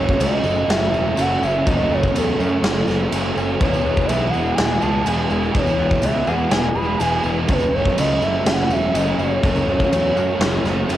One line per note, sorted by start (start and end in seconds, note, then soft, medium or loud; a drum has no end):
0.00 0.15 F#1 loud
0.00 0.20 F#2 medium
0.00 0.92 F#2 medium
0.00 0.20 C#3 medium
0.00 0.92 C#3 medium
0.00 0.22 F#3 medium
0.00 0.92 F#3 loud
0.00 0.94 F#3 medium
0.00 0.20 A3 medium
0.00 0.93 A3 loud
0.00 0.93 C#4 loud
0.00 0.92 F#4 loud
0.00 0.44 A4 loud
0.00 0.23 C#5 loud
0.09 kick medium
0.20 0.39 C#2 loud
0.20 1.18 F#2 medium
0.20 0.46 C#3 medium
0.20 0.45 F#3 loud
0.20 1.17 A3 medium
0.20 0.72 D#5 loud
0.20 tambourine loud
0.20 crash medium
0.44 0.63 F#1 medium
0.44 1.16 F#2 medium
0.44 1.17 C#3 medium
0.44 1.18 C#3 medium
0.44 1.20 F#3 medium
0.44 1.17 F#3 medium
0.44 1.17 A3 medium
0.44 1.17 C#4 medium
0.44 1.16 A4 medium
0.44 tambourine medium
0.56 tambourine soft
0.68 0.87 F#1 medium
0.68 1.41 C#4 medium
0.68 1.22 E5 loud
0.68 snare loud
0.68 tambourine soft
0.68 crash medium
0.92 1.11 E1 loud
0.92 1.16 C#3 medium
0.92 1.17 F#3 medium
0.92 1.17 A3 medium
0.92 1.17 C#4 medium
0.92 1.16 F#4 loud
0.92 tambourine medium
0.96 1.15 F#2 medium
1.16 1.36 F#1 medium
1.16 1.64 F#2 medium
1.16 1.66 F#2 medium
1.16 1.65 C#3 medium
1.16 1.44 C#3 medium
1.16 1.65 F#3 medium
1.16 1.65 A3 medium
1.16 1.90 A3 medium
1.16 1.66 C#4 loud
1.16 1.66 F#4 medium
1.16 1.66 A4 medium
1.16 tambourine loud
1.16 crash medium
1.21 1.42 F#3 medium
1.21 1.45 F#5 loud
1.42 1.60 F#1 medium
1.42 1.67 C#3 medium
1.42 1.69 F#3 medium
1.42 2.63 C#4 medium
1.42 1.69 E5 loud
1.42 tambourine medium
1.65 1.85 F#1 loud
1.65 2.86 F#2 medium
1.65 2.14 F#2 loud
1.65 2.86 C#3 medium
1.65 1.93 C#3 medium
1.65 2.88 F#3 medium
1.65 2.87 F#3 loud
1.65 2.87 A3 medium
1.65 2.86 C#4 medium
1.65 2.85 F#4 loud
1.65 2.38 A4 loud
1.65 1.95 D#5 loud
1.65 kick loud
1.65 tambourine soft
1.65 crash medium
1.70 1.91 F#3 medium
1.90 2.09 F#1 medium
1.90 2.16 F#3 medium
1.90 2.14 A3 medium
1.90 2.19 C#5 loud
1.90 tambourine soft
1.95 2.16 C#3 medium
2.03 kick medium
2.03 tambourine soft
2.15 2.33 E2 medium
2.15 2.64 F#2 medium
2.15 2.41 C#3 medium
2.15 2.39 F#3 medium
2.15 3.12 A3 medium
2.15 3.38 A4 loud
2.15 tambourine medium
2.15 crash medium
2.39 2.58 F#2 medium
2.39 3.11 F#2 medium
2.39 3.11 C#3 medium
2.39 3.12 C#3 medium
2.39 3.13 F#3 medium
2.39 3.11 F#3 medium
2.39 3.11 A3 medium
2.39 3.11 C#4 medium
2.39 3.11 A4 medium
2.39 tambourine medium
2.63 2.82 F#1 medium
2.63 3.35 C#4 medium
2.63 snare loud
2.63 crash medium
2.76 tambourine soft
2.87 3.06 F#1 medium
2.87 3.09 F#2 medium
2.87 3.10 C#3 medium
2.87 3.11 F#3 medium
2.87 3.11 A3 medium
2.87 3.11 C#4 medium
2.87 3.10 F#4 medium
2.87 snare soft
2.87 tambourine medium
3.00 tambourine soft
3.10 3.31 F#1 medium
3.10 3.58 F#2 medium
3.10 3.59 F#2 medium
3.10 3.59 C#3 medium
3.10 3.37 C#3 medium
3.10 3.59 F#3 medium
3.10 3.35 F#3 medium
3.10 3.59 A3 medium
3.10 3.61 A3 medium
3.10 3.60 C#4 medium
3.10 3.60 F#4 medium
3.10 tambourine medium
3.10 crash medium
3.14 3.60 A4 medium
3.36 3.55 F#1 medium
3.36 3.60 C#3 medium
3.36 3.59 F#3 medium
3.36 3.61 C#4 medium
3.36 tambourine medium
3.49 tambourine soft
3.59 3.79 E1 medium
3.59 4.09 E2 medium
3.59 4.80 E2 medium
3.59 4.80 B2 medium
3.59 3.86 B2 medium
3.59 4.82 E3 medium
3.59 4.81 E3 medium
3.59 3.84 E3 loud
3.59 4.82 G#3 medium
3.59 4.80 B3 medium
3.59 4.33 E4 loud
3.59 4.80 G#4 loud
3.59 4.08 C#5 loud
3.59 kick loud
3.59 crash medium
3.74 tambourine medium
3.85 4.03 E1 medium
3.85 4.09 B2 medium
3.85 4.11 E3 medium
3.85 4.08 B3 medium
3.85 tambourine soft
3.97 kick medium
3.97 tambourine soft
4.07 4.28 B1 loud
4.07 5.05 E2 medium
4.07 4.36 B2 medium
4.07 5.05 B3 medium
4.07 4.31 E5 loud
4.07 tambourine medium
4.07 crash medium
4.12 4.34 E3 loud
4.29 5.05 E4 medium
4.29 5.07 G#4 medium
4.29 4.81 G#4 medium
4.29 4.56 F#5 loud
4.33 4.52 E1 medium
4.33 5.06 B2 medium
4.33 5.04 E3 medium
4.33 5.07 E3 medium
4.33 5.05 G#3 medium
4.33 5.05 B3 medium
4.33 tambourine medium
4.46 tambourine soft
4.54 5.30 E4 medium
4.54 4.82 G#5 loud
4.54 crash medium
4.58 4.77 E1 medium
4.58 snare loud
4.80 5.01 C#2 loud
4.80 5.03 E2 medium
4.80 5.04 B2 medium
4.80 5.05 E3 medium
4.80 5.06 G#3 medium
4.80 5.04 B3 medium
4.80 5.07 G#4 medium
4.80 6.28 G#4 medium
4.80 5.06 A5 loud
4.80 tambourine medium
5.05 5.25 E1 loud
5.05 5.51 E2 medium
5.05 5.54 E2 medium
5.05 5.52 B2 medium
5.05 5.32 B2 medium
5.05 5.53 E3 medium
5.05 5.30 E3 medium
5.05 5.54 G#3 medium
5.05 5.77 B3 medium
5.05 5.54 B3 medium
5.05 5.54 E4 medium
5.05 5.55 G#4 loud
5.05 5.30 G#5 loud
5.05 tambourine loud
5.05 crash medium
5.19 tambourine soft
5.30 5.49 E1 loud
5.30 5.55 B2 medium
5.30 5.57 E3 medium
5.30 6.51 E4 medium
5.30 tambourine medium
5.43 tambourine soft
5.52 5.73 E1 medium
5.52 6.73 E2 medium
5.52 6.02 E2 loud
5.52 6.74 B2 loud
5.52 5.79 B2 medium
5.52 6.74 E3 medium
5.52 6.76 E3 medium
5.52 6.76 G#3 medium
5.52 6.74 B3 medium
5.52 6.26 E4 loud
5.52 6.74 G#4 medium
5.52 6.06 C#5 loud
5.52 kick loud
5.52 crash medium
5.58 5.77 E3 loud
5.67 tambourine medium
5.79 5.97 E1 loud
5.79 6.04 B2 medium
5.79 6.04 E3 medium
5.79 6.03 B3 medium
5.91 kick medium
5.91 tambourine soft
6.02 6.22 C#2 medium
6.02 6.52 E2 medium
6.02 6.29 B2 medium
6.02 6.26 E3 medium
6.02 7.00 B3 medium
6.02 6.30 E5 loud
6.02 tambourine loud
6.02 crash medium
6.14 tambourine soft
6.27 6.46 E2 medium
6.27 7.01 B2 medium
6.27 7.03 E3 medium
6.27 6.99 E3 medium
6.27 7.01 G#3 medium
6.27 6.99 B3 medium
6.27 6.99 E4 medium
6.27 7.02 G#4 medium
6.27 6.76 G#4 medium
6.27 6.52 F#5 loud
6.27 tambourine medium
6.39 tambourine soft
6.51 6.70 E1 medium
6.51 7.24 E4 medium
6.51 6.76 G#5 loud
6.51 snare loud
6.51 crash medium
6.75 6.94 E1 medium
6.75 6.98 E2 medium
6.75 6.99 B2 medium
6.75 6.99 E3 medium
6.75 7.01 G#3 medium
6.75 6.99 B3 medium
6.75 7.02 G#4 loud
6.75 7.53 G#4 medium
6.75 7.00 B5 loud
6.75 tambourine medium
6.99 7.19 E1 loud
6.99 7.47 E2 medium
6.99 7.48 E2 medium
6.99 7.47 B2 medium
6.99 7.27 B2 medium
6.99 7.48 E3 medium
6.99 7.50 G#3 medium
6.99 7.49 B3 medium
6.99 7.48 E4 medium
6.99 7.24 G#5 loud
6.99 tambourine loud
6.99 crash medium
7.03 7.25 E3 medium
7.03 7.51 G#4 medium
7.23 7.43 E1 loud
7.23 7.48 E3 medium
7.23 7.49 E4 medium
7.23 tambourine medium
7.28 7.49 B2 medium
7.48 7.67 F#1 loud
7.48 8.68 F#2 medium
7.48 7.98 F#2 medium
7.48 8.69 C#3 medium
7.48 7.75 C#3 medium
7.48 8.70 F#3 medium
7.48 8.69 F#3 medium
7.48 7.73 F#3 loud
7.48 8.69 A3 medium
7.48 8.69 C#4 loud
7.48 8.69 F#4 loud
7.48 8.22 A4 loud
7.48 7.76 B4 loud
7.48 kick loud
7.48 crash medium
7.60 tambourine medium
7.73 7.92 F#1 medium
7.73 7.99 C#3 medium
7.73 8.00 F#3 medium
7.73 7.98 A3 medium
7.73 8.01 C#5 loud
7.73 tambourine soft
7.85 kick medium
7.85 tambourine soft
7.98 8.16 C#2 loud
7.98 8.94 F#2 medium
7.98 8.24 C#3 medium
7.98 8.22 F#3 medium
7.98 8.94 A3 medium
7.98 8.25 D#5 loud
7.98 tambourine loud
7.98 crash medium
8.22 8.40 F#1 medium
8.22 8.92 F#2 medium
8.22 8.93 C#3 medium
8.22 8.95 C#3 medium
8.22 8.96 F#3 medium
8.22 8.93 F#3 medium
8.22 8.94 A3 medium
8.22 8.93 C#4 medium
8.22 8.93 A4 medium
8.22 8.47 E5 loud
8.22 tambourine medium
8.35 tambourine soft
8.45 8.64 F#1 medium
8.45 9.19 C#4 medium
8.45 8.74 F#5 loud
8.45 snare loud
8.45 crash medium
8.69 8.88 E1 loud
8.69 8.92 F#2 medium
8.69 8.93 C#3 medium
8.69 8.94 F#3 medium
8.69 8.94 A3 loud
8.69 8.93 C#4 medium
8.69 8.93 F#4 loud
8.69 8.96 E5 loud
8.69 tambourine medium
8.93 9.12 F#1 medium
8.93 9.41 F#2 medium
8.93 9.42 F#2 medium
8.93 9.41 C#3 medium
8.93 9.21 C#3 medium
8.93 9.42 F#3 medium
8.93 9.19 F#3 medium
8.93 9.66 A3 medium
8.93 9.42 A3 medium
8.93 9.42 C#4 medium
8.93 9.43 F#4 loud
8.93 9.42 A4 medium
8.93 9.21 D#5 loud
8.93 tambourine loud
8.93 crash medium
9.18 9.37 F#1 loud
9.18 9.44 F#3 medium
9.18 10.39 C#4 medium
9.18 10.89 C#5 loud
9.18 tambourine medium
9.22 9.43 C#3 medium
9.31 tambourine soft
9.42 9.62 F#1 medium
9.42 10.62 F#2 loud
9.42 9.91 F#2 medium
9.42 10.63 C#3 medium
9.42 9.70 C#3 loud
9.42 10.64 F#3 medium
9.42 10.63 F#3 medium
9.42 9.67 F#3 loud
9.42 10.63 A3 medium
9.42 10.63 C#4 loud
9.42 10.62 F#4 loud
9.42 10.15 A4 loud
9.42 kick loud
9.42 tambourine soft
9.42 crash medium
9.56 tambourine medium
9.66 9.85 F#1 medium
9.66 9.94 F#3 medium
9.66 9.92 A3 medium
9.66 tambourine soft
9.71 9.93 C#3 medium
9.80 kick medium
9.80 tambourine soft
9.92 10.10 E2 loud
9.92 10.40 F#2 medium
9.92 10.18 C#3 medium
9.92 10.15 F#3 loud
9.92 10.88 A3 medium
9.92 tambourine loud
9.92 crash medium
10.15 10.34 F#2 medium
10.15 10.87 F#2 medium
10.15 10.88 C#3 medium
10.15 10.91 F#3 medium
10.15 10.88 F#3 medium
10.15 10.88 A3 medium
10.15 10.87 C#4 medium
10.15 10.87 A4 medium
10.15 tambourine medium
10.19 10.89 C#3 medium
10.31 tambourine soft
10.39 10.58 F#1 medium
10.39 10.97 C#4 medium
10.39 snare loud
10.39 crash medium
10.54 tambourine soft
10.63 10.83 F#1 loud
10.63 10.86 F#2 medium
10.63 10.87 C#3 medium
10.63 10.87 F#3 medium
10.63 10.87 A3 medium
10.63 10.87 C#4 loud
10.63 10.87 F#4 medium
10.63 snare soft
10.63 tambourine medium
10.87 10.97 F#1 medium
10.87 10.97 F#2 medium
10.87 10.97 C#3 medium
10.87 10.97 F#3 medium
10.87 10.97 A3 medium
10.87 10.97 C#4 medium
10.87 10.97 F#4 medium
10.87 10.97 A4 medium
10.87 tambourine medium
10.87 crash medium
10.92 10.97 F#3 medium